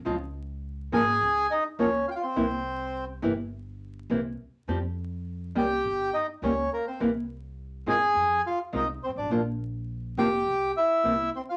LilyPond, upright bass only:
\new Staff \with { instrumentName = "Upright bass" } { \clef bass \time 4/4 \key c \phrygian \tempo 4 = 104 des,4~ des,16. r32 aes,,16. r32 des,16. r8 r32 des,16. r8 r32 | c,4~ c,16. r32 g,,4~ g,,16. r32 c,16. r8 r32 | f,4~ f,16. r32 c,16. r32 g,,16. r8 r32 des,16. r8 r32 | c,4~ c,16. r32 g,,16. r32 f,16. r8 r32 c,16. r16 g,,32 aes,,32 a,,32 |
bes,,4~ bes,,16. r32 f,,16. r32 c,16. r8 r32 c,16. r8 r32 | }